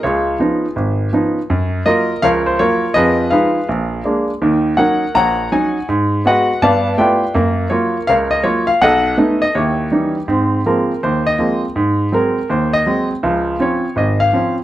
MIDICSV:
0, 0, Header, 1, 2, 480
1, 0, Start_track
1, 0, Tempo, 366524
1, 42, Time_signature, 4, 2, 24, 8
1, 19169, End_track
2, 0, Start_track
2, 0, Title_t, "Grand piano"
2, 0, Program_c, 0, 0
2, 42, Note_on_c, 0, 73, 73
2, 48, Note_on_c, 0, 37, 68
2, 65, Note_on_c, 0, 65, 53
2, 68, Note_on_c, 0, 68, 52
2, 460, Note_off_c, 0, 37, 0
2, 488, Note_off_c, 0, 73, 0
2, 514, Note_on_c, 0, 53, 52
2, 518, Note_on_c, 0, 59, 49
2, 526, Note_on_c, 0, 61, 50
2, 526, Note_on_c, 0, 63, 57
2, 844, Note_off_c, 0, 53, 0
2, 846, Note_off_c, 0, 59, 0
2, 850, Note_off_c, 0, 61, 0
2, 850, Note_off_c, 0, 63, 0
2, 960, Note_off_c, 0, 65, 0
2, 962, Note_off_c, 0, 68, 0
2, 996, Note_on_c, 0, 32, 65
2, 1412, Note_off_c, 0, 32, 0
2, 1477, Note_on_c, 0, 53, 51
2, 1480, Note_on_c, 0, 59, 51
2, 1482, Note_on_c, 0, 61, 50
2, 1492, Note_on_c, 0, 63, 57
2, 1805, Note_off_c, 0, 53, 0
2, 1806, Note_off_c, 0, 59, 0
2, 1807, Note_off_c, 0, 61, 0
2, 1812, Note_off_c, 0, 63, 0
2, 1962, Note_on_c, 0, 42, 69
2, 2374, Note_off_c, 0, 42, 0
2, 2431, Note_on_c, 0, 75, 89
2, 2432, Note_on_c, 0, 54, 55
2, 2435, Note_on_c, 0, 58, 50
2, 2442, Note_on_c, 0, 65, 59
2, 2448, Note_on_c, 0, 70, 63
2, 2761, Note_off_c, 0, 54, 0
2, 2762, Note_off_c, 0, 58, 0
2, 2766, Note_off_c, 0, 65, 0
2, 2912, Note_on_c, 0, 77, 101
2, 2913, Note_off_c, 0, 70, 0
2, 2919, Note_on_c, 0, 53, 70
2, 2922, Note_on_c, 0, 37, 70
2, 2927, Note_off_c, 0, 75, 0
2, 2933, Note_on_c, 0, 70, 71
2, 2937, Note_on_c, 0, 73, 74
2, 2982, Note_off_c, 0, 77, 0
2, 3227, Note_on_c, 0, 72, 77
2, 3331, Note_off_c, 0, 53, 0
2, 3333, Note_off_c, 0, 37, 0
2, 3376, Note_off_c, 0, 73, 0
2, 3395, Note_off_c, 0, 70, 0
2, 3395, Note_on_c, 0, 73, 86
2, 3399, Note_on_c, 0, 54, 56
2, 3401, Note_off_c, 0, 72, 0
2, 3407, Note_on_c, 0, 58, 49
2, 3408, Note_on_c, 0, 65, 58
2, 3415, Note_on_c, 0, 70, 58
2, 3723, Note_off_c, 0, 54, 0
2, 3727, Note_off_c, 0, 58, 0
2, 3840, Note_off_c, 0, 73, 0
2, 3847, Note_off_c, 0, 65, 0
2, 3850, Note_off_c, 0, 70, 0
2, 3852, Note_on_c, 0, 75, 96
2, 3872, Note_on_c, 0, 41, 69
2, 3873, Note_on_c, 0, 68, 64
2, 3873, Note_on_c, 0, 71, 69
2, 3877, Note_on_c, 0, 53, 70
2, 4286, Note_off_c, 0, 41, 0
2, 4289, Note_off_c, 0, 53, 0
2, 4329, Note_on_c, 0, 77, 79
2, 4333, Note_off_c, 0, 71, 0
2, 4334, Note_off_c, 0, 68, 0
2, 4346, Note_on_c, 0, 53, 54
2, 4347, Note_on_c, 0, 56, 50
2, 4353, Note_on_c, 0, 71, 60
2, 4354, Note_on_c, 0, 68, 58
2, 4356, Note_off_c, 0, 75, 0
2, 4357, Note_on_c, 0, 63, 57
2, 4675, Note_off_c, 0, 53, 0
2, 4675, Note_off_c, 0, 56, 0
2, 4680, Note_off_c, 0, 63, 0
2, 4797, Note_off_c, 0, 71, 0
2, 4827, Note_on_c, 0, 34, 69
2, 5242, Note_off_c, 0, 34, 0
2, 5295, Note_on_c, 0, 56, 53
2, 5304, Note_on_c, 0, 58, 48
2, 5304, Note_on_c, 0, 62, 57
2, 5554, Note_off_c, 0, 77, 0
2, 5566, Note_off_c, 0, 68, 0
2, 5628, Note_off_c, 0, 56, 0
2, 5632, Note_off_c, 0, 62, 0
2, 5633, Note_off_c, 0, 58, 0
2, 5784, Note_on_c, 0, 51, 67
2, 5785, Note_on_c, 0, 39, 68
2, 6199, Note_off_c, 0, 51, 0
2, 6200, Note_off_c, 0, 39, 0
2, 6248, Note_on_c, 0, 78, 78
2, 6258, Note_on_c, 0, 54, 55
2, 6261, Note_on_c, 0, 63, 58
2, 6262, Note_on_c, 0, 61, 50
2, 6271, Note_on_c, 0, 70, 58
2, 6274, Note_on_c, 0, 73, 55
2, 6588, Note_off_c, 0, 54, 0
2, 6590, Note_off_c, 0, 61, 0
2, 6590, Note_off_c, 0, 63, 0
2, 6739, Note_on_c, 0, 34, 68
2, 6744, Note_off_c, 0, 78, 0
2, 6745, Note_on_c, 0, 82, 99
2, 6752, Note_off_c, 0, 73, 0
2, 6764, Note_on_c, 0, 78, 69
2, 6772, Note_on_c, 0, 73, 69
2, 7156, Note_off_c, 0, 34, 0
2, 7175, Note_off_c, 0, 70, 0
2, 7226, Note_on_c, 0, 54, 54
2, 7230, Note_on_c, 0, 61, 51
2, 7231, Note_off_c, 0, 73, 0
2, 7232, Note_on_c, 0, 80, 71
2, 7235, Note_on_c, 0, 63, 62
2, 7239, Note_off_c, 0, 82, 0
2, 7251, Note_on_c, 0, 73, 52
2, 7551, Note_off_c, 0, 54, 0
2, 7553, Note_off_c, 0, 61, 0
2, 7556, Note_off_c, 0, 63, 0
2, 7661, Note_off_c, 0, 78, 0
2, 7674, Note_off_c, 0, 80, 0
2, 7684, Note_off_c, 0, 73, 0
2, 7709, Note_on_c, 0, 44, 70
2, 8121, Note_off_c, 0, 44, 0
2, 8183, Note_on_c, 0, 56, 54
2, 8187, Note_on_c, 0, 59, 50
2, 8194, Note_on_c, 0, 66, 62
2, 8210, Note_on_c, 0, 78, 81
2, 8213, Note_on_c, 0, 71, 59
2, 8214, Note_on_c, 0, 75, 61
2, 8509, Note_off_c, 0, 56, 0
2, 8512, Note_off_c, 0, 59, 0
2, 8515, Note_off_c, 0, 66, 0
2, 8643, Note_off_c, 0, 78, 0
2, 8645, Note_off_c, 0, 71, 0
2, 8646, Note_off_c, 0, 75, 0
2, 8670, Note_on_c, 0, 43, 72
2, 8673, Note_on_c, 0, 81, 101
2, 8677, Note_on_c, 0, 59, 68
2, 8685, Note_on_c, 0, 77, 70
2, 8688, Note_on_c, 0, 74, 71
2, 9081, Note_off_c, 0, 43, 0
2, 9085, Note_off_c, 0, 59, 0
2, 9114, Note_off_c, 0, 81, 0
2, 9137, Note_on_c, 0, 57, 54
2, 9139, Note_on_c, 0, 59, 49
2, 9140, Note_on_c, 0, 64, 50
2, 9142, Note_on_c, 0, 65, 52
2, 9143, Note_on_c, 0, 79, 79
2, 9149, Note_off_c, 0, 74, 0
2, 9149, Note_on_c, 0, 67, 59
2, 9164, Note_on_c, 0, 71, 52
2, 9169, Note_on_c, 0, 74, 55
2, 9466, Note_off_c, 0, 57, 0
2, 9467, Note_off_c, 0, 59, 0
2, 9468, Note_off_c, 0, 64, 0
2, 9469, Note_off_c, 0, 65, 0
2, 9472, Note_off_c, 0, 67, 0
2, 9581, Note_off_c, 0, 77, 0
2, 9589, Note_off_c, 0, 79, 0
2, 9600, Note_off_c, 0, 71, 0
2, 9603, Note_off_c, 0, 74, 0
2, 9618, Note_on_c, 0, 58, 74
2, 9623, Note_on_c, 0, 42, 71
2, 10034, Note_off_c, 0, 58, 0
2, 10038, Note_off_c, 0, 42, 0
2, 10081, Note_on_c, 0, 73, 74
2, 10091, Note_on_c, 0, 54, 55
2, 10097, Note_on_c, 0, 58, 52
2, 10105, Note_on_c, 0, 65, 58
2, 10109, Note_on_c, 0, 70, 57
2, 10424, Note_off_c, 0, 54, 0
2, 10427, Note_off_c, 0, 58, 0
2, 10430, Note_off_c, 0, 65, 0
2, 10573, Note_on_c, 0, 77, 96
2, 10575, Note_off_c, 0, 70, 0
2, 10579, Note_off_c, 0, 73, 0
2, 10593, Note_on_c, 0, 37, 69
2, 10595, Note_on_c, 0, 70, 66
2, 10599, Note_on_c, 0, 73, 64
2, 10644, Note_off_c, 0, 77, 0
2, 10879, Note_on_c, 0, 75, 82
2, 11003, Note_off_c, 0, 37, 0
2, 11027, Note_off_c, 0, 73, 0
2, 11046, Note_on_c, 0, 73, 82
2, 11048, Note_on_c, 0, 54, 55
2, 11053, Note_on_c, 0, 58, 50
2, 11057, Note_on_c, 0, 65, 62
2, 11061, Note_off_c, 0, 75, 0
2, 11342, Note_off_c, 0, 73, 0
2, 11354, Note_on_c, 0, 77, 89
2, 11383, Note_off_c, 0, 54, 0
2, 11385, Note_off_c, 0, 58, 0
2, 11387, Note_off_c, 0, 65, 0
2, 11497, Note_off_c, 0, 70, 0
2, 11539, Note_off_c, 0, 77, 0
2, 11543, Note_on_c, 0, 35, 71
2, 11545, Note_on_c, 0, 78, 100
2, 11566, Note_on_c, 0, 75, 74
2, 11572, Note_on_c, 0, 69, 74
2, 11958, Note_off_c, 0, 35, 0
2, 11991, Note_off_c, 0, 78, 0
2, 12016, Note_on_c, 0, 57, 57
2, 12016, Note_on_c, 0, 59, 52
2, 12022, Note_on_c, 0, 63, 63
2, 12024, Note_on_c, 0, 61, 52
2, 12312, Note_off_c, 0, 75, 0
2, 12332, Note_on_c, 0, 75, 85
2, 12347, Note_off_c, 0, 57, 0
2, 12347, Note_off_c, 0, 59, 0
2, 12350, Note_off_c, 0, 63, 0
2, 12351, Note_off_c, 0, 61, 0
2, 12467, Note_off_c, 0, 69, 0
2, 12491, Note_off_c, 0, 75, 0
2, 12504, Note_on_c, 0, 39, 69
2, 12508, Note_on_c, 0, 73, 73
2, 12528, Note_on_c, 0, 67, 54
2, 12531, Note_on_c, 0, 64, 53
2, 12920, Note_off_c, 0, 39, 0
2, 12983, Note_on_c, 0, 52, 53
2, 12987, Note_on_c, 0, 61, 48
2, 12990, Note_on_c, 0, 55, 49
2, 12994, Note_on_c, 0, 63, 57
2, 13245, Note_off_c, 0, 73, 0
2, 13312, Note_off_c, 0, 52, 0
2, 13314, Note_off_c, 0, 61, 0
2, 13315, Note_off_c, 0, 55, 0
2, 13317, Note_off_c, 0, 63, 0
2, 13426, Note_off_c, 0, 67, 0
2, 13427, Note_off_c, 0, 64, 0
2, 13461, Note_on_c, 0, 44, 65
2, 13463, Note_on_c, 0, 60, 68
2, 13879, Note_off_c, 0, 44, 0
2, 13880, Note_off_c, 0, 60, 0
2, 13959, Note_on_c, 0, 53, 52
2, 13965, Note_on_c, 0, 70, 64
2, 13967, Note_on_c, 0, 58, 45
2, 13968, Note_on_c, 0, 56, 50
2, 13968, Note_on_c, 0, 60, 56
2, 14281, Note_off_c, 0, 53, 0
2, 14285, Note_off_c, 0, 56, 0
2, 14285, Note_off_c, 0, 58, 0
2, 14285, Note_off_c, 0, 60, 0
2, 14405, Note_off_c, 0, 70, 0
2, 14446, Note_on_c, 0, 72, 68
2, 14449, Note_on_c, 0, 39, 68
2, 14739, Note_off_c, 0, 72, 0
2, 14753, Note_on_c, 0, 75, 84
2, 14856, Note_off_c, 0, 39, 0
2, 14911, Note_on_c, 0, 53, 50
2, 14912, Note_on_c, 0, 58, 47
2, 14916, Note_on_c, 0, 56, 47
2, 14918, Note_on_c, 0, 60, 54
2, 15195, Note_off_c, 0, 75, 0
2, 15239, Note_off_c, 0, 53, 0
2, 15239, Note_off_c, 0, 58, 0
2, 15241, Note_off_c, 0, 56, 0
2, 15242, Note_off_c, 0, 60, 0
2, 15397, Note_on_c, 0, 44, 72
2, 15810, Note_off_c, 0, 44, 0
2, 15875, Note_on_c, 0, 54, 51
2, 15882, Note_on_c, 0, 60, 55
2, 15883, Note_on_c, 0, 56, 48
2, 15903, Note_on_c, 0, 70, 72
2, 16202, Note_off_c, 0, 54, 0
2, 16205, Note_off_c, 0, 60, 0
2, 16206, Note_off_c, 0, 56, 0
2, 16336, Note_off_c, 0, 70, 0
2, 16364, Note_on_c, 0, 39, 69
2, 16377, Note_on_c, 0, 72, 67
2, 16668, Note_off_c, 0, 72, 0
2, 16677, Note_on_c, 0, 75, 92
2, 16776, Note_off_c, 0, 39, 0
2, 16847, Note_on_c, 0, 54, 52
2, 16849, Note_on_c, 0, 56, 46
2, 16854, Note_on_c, 0, 60, 59
2, 17119, Note_off_c, 0, 75, 0
2, 17169, Note_off_c, 0, 54, 0
2, 17170, Note_off_c, 0, 56, 0
2, 17172, Note_off_c, 0, 60, 0
2, 17327, Note_on_c, 0, 37, 72
2, 17329, Note_on_c, 0, 53, 68
2, 17738, Note_off_c, 0, 37, 0
2, 17739, Note_off_c, 0, 53, 0
2, 17803, Note_on_c, 0, 60, 50
2, 17805, Note_on_c, 0, 53, 55
2, 17809, Note_on_c, 0, 61, 61
2, 17835, Note_on_c, 0, 73, 70
2, 18128, Note_off_c, 0, 60, 0
2, 18129, Note_off_c, 0, 53, 0
2, 18132, Note_off_c, 0, 61, 0
2, 18265, Note_off_c, 0, 73, 0
2, 18281, Note_on_c, 0, 32, 67
2, 18303, Note_on_c, 0, 75, 72
2, 18593, Note_off_c, 0, 75, 0
2, 18596, Note_on_c, 0, 77, 84
2, 18696, Note_off_c, 0, 32, 0
2, 18764, Note_on_c, 0, 53, 53
2, 18778, Note_on_c, 0, 60, 50
2, 18779, Note_on_c, 0, 61, 59
2, 19041, Note_off_c, 0, 77, 0
2, 19090, Note_off_c, 0, 53, 0
2, 19097, Note_off_c, 0, 60, 0
2, 19098, Note_off_c, 0, 61, 0
2, 19169, End_track
0, 0, End_of_file